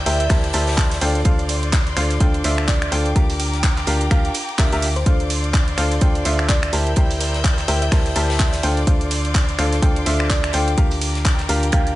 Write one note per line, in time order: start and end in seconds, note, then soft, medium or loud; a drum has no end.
0.00 1.00 A#4 medium
0.00 3.12 D5 medium
0.00 1.00 E6 medium
0.00 1.00 G6 medium
0.06 0.28 D2 loud
0.06 0.22 E4 medium
0.06 0.22 G4 medium
0.06 0.22 A#4 medium
0.06 0.22 C5 medium
0.06 0.15 E5 medium
0.06 0.22 G5 loud
0.06 open hi-hat loud
0.06 ride medium
0.20 0.27 E5 medium
0.20 closed hi-hat medium
0.20 ride soft
0.30 0.52 D2 loud
0.30 0.52 E4 medium
0.30 0.52 G4 medium
0.30 0.52 A#4 medium
0.30 0.52 C5 medium
0.30 0.52 A5 medium
0.30 finger snap medium
0.30 kick loud
0.30 snare loud
0.30 closed hi-hat medium
0.30 open hi-hat medium
0.44 closed hi-hat soft
0.53 1.00 D2 loud
0.53 0.99 E4 medium
0.53 0.99 G4 medium
0.53 0.99 A#4 medium
0.53 0.99 C5 medium
0.53 0.99 E5 medium
0.53 1.07 A5 loud
0.53 open hi-hat loud
0.53 ride medium
0.67 snare loud
0.67 open hi-hat medium
0.78 kick loud
0.78 snare loud
0.78 clap loud
0.78 closed hi-hat medium
0.78 ride medium
0.91 snare loud
0.91 closed hi-hat medium
0.91 ride medium
1.01 1.23 D2 loud
1.01 1.18 D4 medium
1.01 1.18 F4 medium
1.01 1.18 A4 medium
1.01 1.18 C5 medium
1.01 1.18 G5 loud
1.01 3.14 C6 medium
1.01 6.69 D6 medium
1.01 open hi-hat loud
1.01 ride medium
1.15 closed hi-hat soft
1.25 1.95 D2 loud
1.25 1.94 D4 medium
1.25 1.94 F4 medium
1.25 1.94 A4 medium
1.25 1.94 C5 medium
1.25 1.94 F5 medium
1.25 kick loud
1.25 closed hi-hat medium
1.25 ride loud
1.39 closed hi-hat soft
1.49 open hi-hat loud
1.49 ride medium
1.63 closed hi-hat soft
1.63 ride soft
1.73 kick loud
1.73 snare loud
1.73 clap loud
1.73 closed hi-hat medium
1.73 ride loud
1.87 closed hi-hat soft
1.97 2.19 D2 loud
1.97 2.13 D4 medium
1.97 2.13 F4 medium
1.97 2.13 A4 medium
1.97 2.13 C5 medium
1.97 2.13 F5 medium
1.97 finger snap medium
1.97 open hi-hat loud
1.97 ride medium
2.10 snare soft
2.10 closed hi-hat medium
2.20 2.42 D2 loud
2.20 2.42 D4 medium
2.20 2.42 F4 medium
2.20 2.42 A4 medium
2.20 2.42 C5 medium
2.20 2.42 G5 medium
2.20 kick loud
2.20 closed hi-hat medium
2.20 ride medium
2.34 closed hi-hat soft
2.34 ride soft
2.44 2.90 D2 loud
2.44 2.90 D4 medium
2.44 2.90 F4 medium
2.44 2.90 A4 medium
2.44 2.90 C5 medium
2.44 2.90 E5 medium
2.44 snare soft
2.44 open hi-hat loud
2.44 ride medium
2.58 finger snap medium
2.58 ride soft
2.68 2.87 D5 medium
2.68 kick loud
2.68 snare loud
2.68 clap loud
2.68 closed hi-hat medium
2.68 ride loud
2.82 finger snap medium
2.82 closed hi-hat soft
2.92 3.14 D2 loud
2.92 3.08 D4 medium
2.92 3.08 F4 medium
2.92 3.08 A4 medium
2.92 3.08 C5 medium
2.92 3.10 G5 medium
2.92 3.08 G5 loud
2.92 open hi-hat loud
2.92 ride medium
3.05 closed hi-hat soft
3.05 ride soft
3.16 3.85 D2 medium
3.16 3.85 D4 medium
3.16 3.85 F4 medium
3.16 3.85 G4 medium
3.16 3.85 A#4 medium
3.16 3.85 F5 medium
3.16 5.04 G5 medium
3.16 5.04 A#5 medium
3.16 kick loud
3.16 closed hi-hat medium
3.16 ride medium
3.30 open hi-hat medium
3.30 ride soft
3.39 open hi-hat loud
3.39 ride medium
3.53 snare medium
3.53 closed hi-hat soft
3.63 kick loud
3.63 snare loud
3.63 clap loud
3.63 closed hi-hat medium
3.63 ride medium
3.77 snare soft
3.77 clap soft
3.77 closed hi-hat soft
3.87 4.09 D2 loud
3.87 4.03 D4 medium
3.87 4.03 F4 medium
3.87 4.03 G4 medium
3.87 4.03 A#4 medium
3.87 4.03 F5 medium
3.87 open hi-hat loud
3.87 ride medium
4.01 closed hi-hat medium
4.01 ride soft
4.11 4.31 D2 loud
4.11 4.33 D4 medium
4.11 4.33 F4 medium
4.11 4.33 G4 medium
4.11 4.33 A#4 medium
4.11 4.30 F5 medium
4.11 4.33 G5 medium
4.11 finger snap medium
4.11 kick loud
4.11 closed hi-hat medium
4.11 ride medium
4.25 closed hi-hat soft
4.34 open hi-hat loud
4.34 ride medium
4.49 ride soft
4.58 4.70 D2 loud
4.58 4.69 D4 medium
4.58 4.69 F4 medium
4.58 4.69 G4 medium
4.58 4.69 A#4 medium
4.58 4.69 E5 medium
4.58 kick loud
4.58 snare loud
4.58 clap loud
4.58 closed hi-hat medium
4.58 open hi-hat medium
4.72 5.04 D2 loud
4.72 4.85 D4 loud
4.72 4.85 F4 medium
4.72 4.85 G4 medium
4.72 4.85 A#4 medium
4.72 4.85 E5 loud
4.72 closed hi-hat soft
4.82 open hi-hat loud
4.82 ride medium
4.96 5.12 C5 loud
4.96 closed hi-hat soft
5.06 5.76 D2 loud
5.06 5.75 D4 medium
5.06 5.75 F4 medium
5.06 5.75 A4 medium
5.06 5.75 C5 medium
5.06 6.71 D5 medium
5.06 5.75 F5 medium
5.06 6.71 C6 medium
5.06 kick loud
5.06 closed hi-hat medium
5.06 ride loud
5.20 closed hi-hat soft
5.30 open hi-hat loud
5.30 ride medium
5.44 closed hi-hat soft
5.44 ride soft
5.53 kick loud
5.53 snare loud
5.53 clap loud
5.53 closed hi-hat medium
5.53 ride medium
5.68 closed hi-hat soft
5.78 6.00 D2 loud
5.78 5.94 D4 medium
5.78 5.94 F4 medium
5.78 5.94 A4 medium
5.78 5.94 C5 medium
5.78 5.94 F5 medium
5.78 finger snap medium
5.78 open hi-hat loud
5.78 ride medium
5.92 snare soft
5.92 closed hi-hat medium
6.01 6.23 D2 loud
6.01 6.23 D4 medium
6.01 6.23 F4 medium
6.01 6.23 A4 medium
6.01 6.23 C5 medium
6.01 6.23 G5 medium
6.01 kick loud
6.01 closed hi-hat medium
6.01 ride loud
6.15 closed hi-hat soft
6.15 ride soft
6.25 6.71 D2 loud
6.25 6.71 D4 medium
6.25 6.71 F4 medium
6.25 6.71 A4 medium
6.25 6.71 C5 medium
6.25 6.71 E5 medium
6.25 snare soft
6.25 open hi-hat loud
6.25 ride medium
6.39 finger snap medium
6.39 ride soft
6.49 6.68 D5 loud
6.49 kick loud
6.49 snare loud
6.49 clap loud
6.49 closed hi-hat medium
6.49 ride medium
6.63 finger snap medium
6.63 closed hi-hat medium
6.73 6.95 D2 loud
6.73 6.89 E4 medium
6.73 6.89 G4 medium
6.73 6.89 A#4 medium
6.73 8.62 A#4 medium
6.73 6.89 C5 medium
6.73 10.74 D5 medium
6.73 6.89 A5 loud
6.73 8.62 E6 medium
6.73 8.62 G6 loud
6.73 open hi-hat loud
6.73 ride medium
6.87 closed hi-hat soft
6.87 ride soft
6.96 7.66 D2 medium
6.96 7.66 E4 medium
6.96 7.66 G4 medium
6.96 7.66 A#4 medium
6.96 7.66 C5 medium
6.96 7.66 G5 medium
6.96 kick loud
6.96 closed hi-hat medium
6.96 ride loud
7.11 open hi-hat medium
7.11 ride soft
7.21 open hi-hat loud
7.21 ride medium
7.34 snare medium
7.34 closed hi-hat soft
7.44 kick loud
7.44 snare loud
7.44 clap loud
7.44 closed hi-hat medium
7.44 ride loud
7.58 snare soft
7.58 clap soft
7.58 closed hi-hat soft
7.68 7.90 D2 loud
7.68 7.84 E4 medium
7.68 7.84 G4 medium
7.68 7.84 A#4 medium
7.68 7.84 C5 medium
7.68 7.77 E5 medium
7.68 7.84 G5 medium
7.68 open hi-hat loud
7.68 ride medium
7.82 7.88 E5 medium
7.82 closed hi-hat medium
7.82 ride soft
7.92 8.14 D2 loud
7.92 8.14 E4 medium
7.92 8.14 G4 medium
7.92 8.14 A#4 medium
7.92 8.14 C5 medium
7.92 8.14 A5 medium
7.92 finger snap medium
7.92 kick loud
7.92 snare loud
7.92 closed hi-hat medium
7.92 open hi-hat medium
8.06 closed hi-hat soft
8.16 8.61 D2 loud
8.16 8.61 E4 medium
8.16 8.61 G4 medium
8.16 8.61 A#4 medium
8.16 8.61 C5 medium
8.16 8.61 E5 medium
8.16 8.69 A5 medium
8.16 open hi-hat loud
8.16 ride medium
8.30 snare loud
8.30 open hi-hat medium
8.39 kick loud
8.39 snare loud
8.39 clap loud
8.39 closed hi-hat medium
8.39 ride medium
8.53 snare loud
8.53 closed hi-hat medium
8.53 ride medium
8.63 8.85 D2 loud
8.63 8.79 D4 medium
8.63 8.79 F4 medium
8.63 8.79 A4 medium
8.63 8.79 C5 medium
8.63 8.79 G5 loud
8.63 10.76 C6 medium
8.63 11.95 D6 medium
8.63 open hi-hat loud
8.63 ride medium
8.77 closed hi-hat soft
8.87 9.57 D2 medium
8.87 9.56 D4 medium
8.87 9.56 F4 medium
8.87 9.56 A4 medium
8.87 9.56 C5 medium
8.87 9.56 F5 medium
8.87 kick loud
8.87 closed hi-hat medium
8.87 ride medium
9.01 closed hi-hat soft
9.11 open hi-hat loud
9.11 ride medium
9.25 closed hi-hat soft
9.25 ride soft
9.34 kick loud
9.34 snare loud
9.34 clap loud
9.34 closed hi-hat medium
9.34 ride loud
9.49 closed hi-hat soft
9.59 9.80 D2 loud
9.59 9.75 D4 medium
9.59 9.75 F4 medium
9.59 9.75 A4 medium
9.59 9.75 C5 medium
9.59 9.75 F5 medium
9.59 finger snap medium
9.59 open hi-hat loud
9.59 ride medium
9.73 snare soft
9.73 closed hi-hat medium
9.82 10.04 D2 loud
9.82 10.04 D4 medium
9.82 10.04 F4 medium
9.82 10.04 A4 medium
9.82 10.04 C5 medium
9.82 10.04 G5 medium
9.82 kick loud
9.82 closed hi-hat medium
9.82 ride medium
9.96 closed hi-hat soft
9.96 ride soft
10.06 10.52 D2 loud
10.06 10.52 D4 medium
10.06 10.51 F4 medium
10.06 10.51 A4 medium
10.06 10.51 C5 medium
10.06 10.51 E5 medium
10.06 snare soft
10.06 open hi-hat loud
10.06 ride medium
10.20 finger snap medium
10.20 ride soft
10.30 10.49 D5 medium
10.30 kick loud
10.30 snare loud
10.30 clap loud
10.30 closed hi-hat medium
10.30 ride loud
10.44 finger snap medium
10.44 closed hi-hat medium
10.53 10.76 D2 loud
10.53 10.70 D4 medium
10.53 10.70 F4 medium
10.53 10.70 A4 medium
10.53 10.70 C5 medium
10.53 10.70 G5 loud
10.53 10.72 G5 medium
10.53 open hi-hat loud
10.53 ride medium
10.68 closed hi-hat soft
10.68 ride soft
10.78 11.47 D2 loud
10.78 11.47 D4 medium
10.78 11.47 F4 medium
10.78 11.47 G4 medium
10.78 11.47 A#4 medium
10.78 11.47 F5 medium
10.78 11.95 G5 medium
10.78 11.95 A#5 medium
10.78 kick loud
10.78 closed hi-hat medium
10.78 ride medium
10.91 open hi-hat medium
10.91 ride soft
11.01 open hi-hat loud
11.01 ride medium
11.15 snare medium
11.15 closed hi-hat soft
11.25 kick loud
11.25 snare loud
11.25 clap loud
11.25 closed hi-hat medium
11.25 ride medium
11.39 snare soft
11.39 clap soft
11.39 closed hi-hat soft
11.49 11.71 D2 loud
11.49 11.65 D4 medium
11.49 11.65 F4 medium
11.49 11.65 G4 medium
11.49 11.65 A#4 medium
11.49 11.65 F5 medium
11.49 open hi-hat loud
11.49 ride medium
11.63 closed hi-hat medium
11.63 ride soft
11.72 11.95 D2 loud
11.72 11.95 D4 medium
11.72 11.95 F4 medium
11.72 11.95 G4 medium
11.72 11.95 A#4 medium
11.72 11.91 F5 medium
11.72 11.95 G5 medium
11.72 finger snap medium
11.72 kick loud
11.72 closed hi-hat medium
11.72 ride medium
11.87 closed hi-hat soft